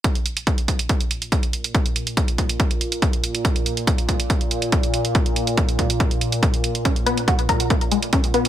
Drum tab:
HH |xxxxxxxxxxxxxxxx|xxxxxxxxxxxxxxxx|xxxxxxxxxxxxxxxx|xxxxxxxxxxxxxxxx|
BD |o---o-o-o---o---|o---o-o-o---o---|o---o-o-o---o---|o---o-o-o---o---|

HH |xxxxxxxxxxxxxxxx|
BD |o---o-o-o---o---|